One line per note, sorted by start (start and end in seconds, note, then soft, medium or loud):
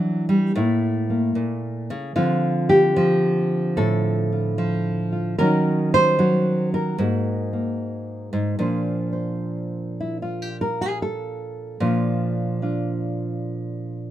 0.00 0.51 E3 medium
0.00 0.28 F#3 medium
0.00 0.52 D4 soft
0.00 0.52 E4 soft
0.00 1.90 C#5 loud
0.29 0.55 G3 medium
0.55 1.35 A2 medium
0.55 2.13 A3 medium
0.55 1.08 A#3 soft
0.55 2.14 E4 soft
1.10 2.16 A#3 soft
1.35 1.89 A#2 medium
1.90 2.15 C#3 medium
2.16 5.34 D3 medium
2.16 2.95 F3 soft
2.16 5.35 C4 soft
2.16 2.96 F4 medium
2.69 3.76 G4 medium
2.96 4.57 F3 medium
2.96 4.31 F4 soft
3.77 5.34 A2 medium
3.77 5.37 A4 medium
4.32 5.11 F4 soft
4.58 5.38 F3 medium
5.12 5.35 F4 soft
5.38 6.96 D#3 medium
5.38 6.18 F#3 soft
5.38 6.97 C#4 medium
5.38 6.18 F#4 medium
5.38 5.92 A#4 loud
5.94 6.73 C5 loud
6.19 6.95 F#3 medium
6.19 6.96 F#4 soft
6.74 8.60 A#4 medium
6.98 8.32 G#2 medium
6.98 8.56 G#3 soft
6.98 7.52 A#3 soft
6.98 8.57 F#4 soft
7.53 8.60 A#3 soft
8.33 8.58 G#2 medium
8.59 11.77 A#2 medium
8.59 11.81 F3 soft
8.59 11.81 D4 soft
8.59 9.12 C5 soft
9.13 10.42 C5 soft
10.00 10.17 E4 medium
10.22 10.48 F4 medium
10.42 10.61 G4 medium
10.61 10.81 A#4 medium
10.81 10.97 G#4 medium
11.02 11.82 A4 medium
11.80 14.11 A#2 medium
11.80 14.11 F3 soft
11.80 12.62 D4 soft
11.80 12.62 F4 soft
12.62 14.11 D4 soft
12.62 14.11 F4 soft